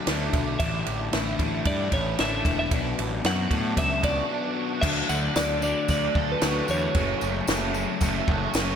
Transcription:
Already playing: D3 D4
0.06 D2 D3 F#3 A3 D4, snare, ride
0.32 B1 D4, kick, ride
0.59 A1 A2 D3 E3 A3 D4 E5, kick, ride
0.86 A1, ride
1.11 A1 A2 D3 E3 A3 D4 E4, snare, ride
1.38 A1 E3 A3 D4, kick, ride
1.65 G2 D3 D5, kick, ride
1.91 A1 E3 A3 D4 E4 C#5, kick, ride
2.18 A1 D3 E3 A3 D4 E5, snare, ride
2.45 E1 E4, kick, ride
2.59 E5
2.70 B1 B2 F#3 B3 D4 D5, kick, ride
2.99 A1, ride
3.22 F#2 B2 F#3 B3 D4 F#4 F#5, snare, ride
3.49 A2 F#3 B3 D4, kick, ride
3.77 C#2 B3 E5, kick, ride
4.02 F#3 B3 D4 F#4 D5, kick, ride
4.29 B2 F#3 B3 D4
4.56 F#4
4.81 D2 D3 F#3 A3 E5, kick, crash, tambourine
4.86 D4
5.09 D2 F#3 A3 D4 F#5, tambourine
5.35 D2 D3 F#3 A3 D4 D5, snare, tambourine, crash
5.62 D3 F#3 A3 D4 D5, tambourine
5.88 D2 D5, kick, tambourine, crash
6.14 D2 F#3 A3 D4 A4, kick
6.32 B4
6.40 D2 D3 F#3 A3 D4 F#4, snare, tambourine, crash
6.68 E2 D3 C#5, tambourine
6.94 F#1 F#2 C#3 F#3 A3 C#4, kick, tambourine, crash
7.21 F#1 C#3 F#3 A3 C#4, tambourine
7.47 F#1 F#2 C#3 F#3 A3 C#4, snare, tambourine, crash
7.74 E3 F#3 A3 C#4, tambourine
8.01 F#1 A3, kick, tambourine, crash
8.28 F#1 F#3 A3 C#4 F#4, kick
8.54 F#1 C#3 F#3 A3 C#4, snare, tambourine, crash

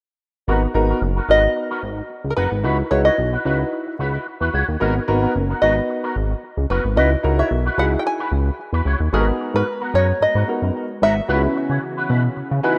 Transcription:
0.47 G#1 B3 D#4 F#4 A#4
0.62 muted clean electric guitar stroke
0.74 G#1 B3 D#4 F#4 A#4, muted clean electric guitar stroke
0.89 B3 F#4 A#4
1.02 F#1, muted clean electric guitar stroke
1.16 B3 F#4 A#4
1.28 G#1 B3 D#4 F#4 A#4 D#5
1.43 muted clean electric guitar stroke
1.56 muted clean electric guitar stroke
1.70 B3 F#4 A#4
1.83 G#1, muted clean electric guitar stroke
1.97 muted clean electric guitar stroke
2.10 muted clean electric guitar stroke
2.24 C#2, muted clean electric guitar stroke
2.30 A#4
2.36 F#1 B3 F#4 A#4 B4
2.51 G#1, muted clean electric guitar stroke
2.63 C#2 D#4 E4 F#4 B4
2.78 muted clean electric guitar stroke
2.91 C#2 D#4 E4 F#4 B4 C#5, muted clean electric guitar stroke
3.05 E4 F#4 C#5 D#5
3.18 B1, muted clean electric guitar stroke
3.32 E4 F#4 B4
3.45 C#2 D#4 E4 F#4 B4
3.59 muted clean electric guitar stroke
3.72 muted clean electric guitar stroke
3.86 muted clean electric guitar stroke
3.99 C#2 E4 F#4 B4
4.13 E4 F#4 B4
4.27 muted clean electric guitar stroke
4.40 E2 E4 F#4 B4
4.53 C#2 E4 F#4 C#5
4.68 D#2, muted clean electric guitar stroke
4.80 G#1 B3 D#4 F#4 A#4
4.95 muted clean electric guitar stroke
5.08 G#1 B3 D#4 F#4 A#4, muted clean electric guitar stroke
5.22 B3 F#4 A#4
5.35 F#1, muted clean electric guitar stroke
5.49 B3 F#4 A#4
5.62 G#1 B3 D#4 F#4 A#4 B4 D#5
5.76 muted clean electric guitar stroke
5.89 muted clean electric guitar stroke
6.03 B3 F#4 A#4
6.16 G#1, muted clean electric guitar stroke
6.30 muted clean electric guitar stroke
6.43 muted clean electric guitar stroke
6.57 C#2, muted clean electric guitar stroke
6.70 F#1 B3 F#4 A#4 B4
6.84 G#1, muted clean electric guitar stroke
6.96 C#2 D#4 E4 F#4 B4 D#5
7.11 muted clean electric guitar stroke
7.23 C#2 D#4 E4 F#4 A#4, muted clean electric guitar stroke
7.38 E4 F#4 C#5 E5
7.51 B1, muted clean electric guitar stroke
7.65 E4 F#4 B4
7.78 C#2 D#4 E4 F#4 G#4 B4 F#5
7.93 muted clean electric guitar stroke
7.99 G5
8.05 G#5, muted clean electric guitar stroke
8.19 E4 F#4 B4
8.32 C#2, muted clean electric guitar stroke
8.46 muted clean electric guitar stroke
8.59 muted clean electric guitar stroke
8.73 E2 E4 F#4 B4
8.85 C#2 E4 F#4 C#5
9.00 D#2, muted clean electric guitar stroke
9.12 G#1 G#3 B3 D#4 F#4 G#4 A4 A#4 A#5
9.20 A#4
9.27 muted clean electric guitar stroke
9.40 muted clean electric guitar stroke
9.54 G#2 B3 F#4 A#4 B4
9.67 muted clean electric guitar stroke
9.81 B3 F#4 A#4
9.94 F#2 B3 F#4 A#4 C#5
10.08 muted clean electric guitar stroke
10.21 G#2 D#5, muted clean electric guitar stroke
10.35 G#2 B3 F#4 A#4
10.48 B3 D#4 F#4 A#4, muted clean electric guitar stroke
10.62 F#2, muted clean electric guitar stroke
10.75 muted clean electric guitar stroke
10.89 muted clean electric guitar stroke
11.02 G#1 B3 F#4 A#4 E5
11.16 muted clean electric guitar stroke
11.28 C#2 C#3 E3 B3 C#4 E4 F#4 B4
11.43 muted clean electric guitar stroke
11.55 muted clean electric guitar stroke
11.70 C#3 E4 F#4 C#5
11.82 muted clean electric guitar stroke
11.97 E4 F#4 B4
12.09 B2 E4 F#4 B4
12.23 muted clean electric guitar stroke
12.36 C#3, muted clean electric guitar stroke
12.50 C#3, muted clean electric guitar stroke
12.63 D#4 E4 F#4 B4 G#5

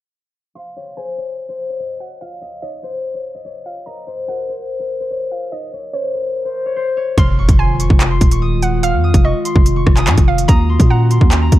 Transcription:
0.55 F5 C6
0.77 C#5
0.97 C5 G#5
1.18 C#5
1.49 C5
1.70 C#5
1.80 D#5
2.00 F#5
2.21 F5
2.42 D#5
2.62 C#5 D#5
2.83 C5
3.14 C#5
3.35 D#5
3.45 C#5
3.66 F5
3.86 D#5 A#5
4.07 C5
4.28 A#4 F#5
4.49 C5
4.80 A#4
5.00 C5
5.11 C#5
5.32 F5
5.52 D#5
5.73 C#5
5.93 C5 C#5
6.14 A#4
6.45 C5
6.66 C#5
6.76 C5
6.97 C#5
7.17 F1 D#3 G#3 F4 C6 F6, kick, closed hi-hat, impact
7.38 D#1 C#6
7.49 F1, kick, closed hi-hat
7.59 G#5 C6
7.80 C#6, closed hi-hat
7.90 F1, kick
8.00 clap, closed hi-hat
8.11 C6
8.21 D#1, kick, closed hi-hat
8.31 C#6, closed hi-hat
8.42 D#6
8.62 F#5, closed hi-hat
8.83 F5 F6, closed hi-hat
8.94 F2
9.04 D#6
9.14 F1, kick, closed hi-hat
9.24 D#5 C#6
9.45 C6, closed hi-hat
9.56 F1, kick
9.66 closed hi-hat
9.76 C#6
9.87 F1, kick, cross-stick
9.97 D#6, clap, closed hi-hat
10.07 G#2 C#6, clap, closed hi-hat
10.18 F1, kick, closed hi-hat
10.28 F5
10.38 closed hi-hat
10.48 D#2 D#3 C#4 F#4 A#5 D#6, kick, closed hi-hat
10.69 C6
10.80 A#2, kick, closed hi-hat
10.90 F#5 A#5
11.11 C6, closed hi-hat
11.21 D#2, kick
11.31 clap, closed hi-hat
11.42 A#5
11.52 D#2, kick, closed hi-hat

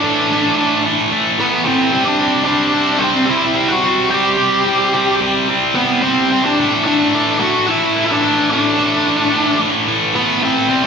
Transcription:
Already playing: D4 D5
0.02 A2 E3 A3
0.31 A2 E3 A3
0.57 A2 E3 A3
0.85 A2 E3 A3
1.11 A2 E3 A3
1.38 A2 E3 A3 B3 B4
1.66 A2 E3 A3 C4 C5
1.92 C3 G3 C4
2.05 D4 D5
2.19 C3 G3 C4
2.45 C3 G3 C4 D4 D5
2.74 C3 G3 C4
2.99 C3 G3 C4 C5
3.04 C4
3.26 C3 G3 C4 E5
3.30 E4
3.55 C3 G3 C4
3.68 F#4 F#5
3.83 C3 G3 C4
4.11 C3 G3 C4 G4 G5
4.37 C3 G3 C4
4.64 C3 G3 C4
4.93 C3 G3 C4
5.21 C3 G3 C4
5.49 C3 G3 C4
5.75 C3 G3 B3 C4 B4
6.02 C3 G3 C4 C5
6.31 C3 G3 C4
6.44 D4 D5
6.59 A2 E3 A3
6.84 A2 E3 A3 D4 D5
7.14 A2 E3 A3
7.39 A2 E3 A3 F#4 F#5
7.68 A2 E3 A3 E4 E5
7.96 A2 E3 A3
8.11 D4 D5
8.23 A2 E3 A3
8.51 A2 E3 A3 D4 D5
8.78 A2 E3 A3
9.05 A2 E3 A3
9.32 A2 E3 A3
9.60 A2 E3 A3
9.87 A2 E3 A3
10.14 A2 E3 A3 B3 B4
10.41 A2 E3 A3 C4 C5
10.68 C3 G3 C4

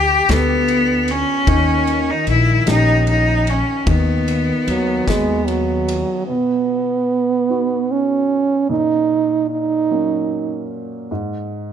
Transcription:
Already playing: D2 D3 G4
0.29 D2 B3 G4 A4, snare, ride
0.68 ride
1.08 C#4, ride
1.47 D#2 D#3, kick, ride
1.87 ride
2.10 D#4
2.27 A#1 E4, ride
2.66 A#1 C#4 D#4 G4, snare, ride
3.07 D#4, ride
3.47 C#4, ride
3.86 D#2 D#3 B3, kick, ride
4.28 ride
4.68 D#2 F#3, ride
5.06 D#2 G#3 B3 F#4 G#4, kick, snare, ride
5.47 F#3, ride
5.88 ride
6.27 B2 B3
7.49 B3 D#4 F#4
7.91 C#4
8.69 A#2 D#4
9.50 D#4
9.90 F#3 A#3 C#4
11.11 G#2

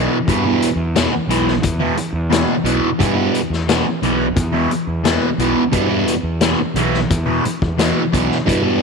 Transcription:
Already playing: E2 B2 E3
0.27 E2 G2 B2 E3, kick, closed hi-hat
0.45 E2 B2 E3
0.62 closed hi-hat
0.76 E2
0.95 E2 B2 E3, snare, closed hi-hat
1.12 muted distorted electric guitar stroke
1.27 B1 E2 B2 E3, closed hi-hat
1.48 snare
1.63 E2, kick, closed hi-hat
1.79 E2 B2 E3
1.97 muted distorted electric guitar stroke, closed hi-hat
2.13 E2
2.30 E2 B2 E3, snare, closed hi-hat
2.64 B1 E2 B2 E3, closed hi-hat
2.99 E2 G2 B2 E3, kick, closed hi-hat
3.15 E2 B2 E3
3.35 closed hi-hat
3.50 E2, snare
3.68 E2 B2 E3, snare, closed hi-hat
3.86 muted distorted electric guitar stroke
4.02 B1 E2 B2 E3, closed hi-hat
4.36 E2, kick, closed hi-hat
4.53 E2 B2 E3
4.71 muted distorted electric guitar stroke, closed hi-hat
4.87 E2
5.04 E2 B2 E3, snare, closed hi-hat
5.38 B1 E2 B2 E3, closed hi-hat
5.72 E2 G2 B2 E3, kick, closed hi-hat
5.89 E2 B2 E3
6.08 closed hi-hat
6.23 E2
6.41 E2 B2 E3, snare, closed hi-hat
6.60 muted distorted electric guitar stroke
6.74 B1 E2 B2 E3, closed hi-hat
6.94 snare
7.10 E2, kick, closed hi-hat
7.26 E2 B2 E3
7.44 muted distorted electric guitar stroke, closed hi-hat
7.62 E2, kick
7.78 E2 B2 E3, snare, closed hi-hat
8.12 B1 E2 B2 E3, kick, closed hi-hat
8.31 snare
8.46 E2 G2 B2 E3, kick, closed hi-hat
8.63 E2 B2 E3

